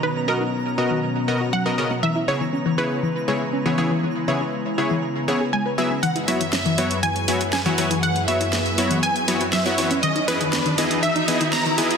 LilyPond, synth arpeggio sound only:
\new Staff \with { instrumentName = "Synth arpeggio sound" } { \clef bass \time 4/4 \key fis \mixolydian \tempo 4 = 120 dis16 r8 dis'16 r8. dis16 r8. fis'16 fis16 ais'16 r16 b16 | e16 e'16 r16 e16 cis'16 e16 r8 e16 r16 gis16 r16 cis'16 e16 e16 e16 | e16 r8 e'16 r8. e16 r8. gis'16 gis16 b'16 r16 cis'16 | e16 e'16 r16 e16 cis'16 e16 r8 e16 r16 fis16 r16 cis'16 e16 e16 e16 |
e16 r8 e'16 r8. e16 r8. fis'16 fis16 b'16 r16 cis'16 | dis16 dis'16 r16 dis16 b16 dis16 r8 dis16 dis'16 r16 dis16 b16 dis16 r8 | }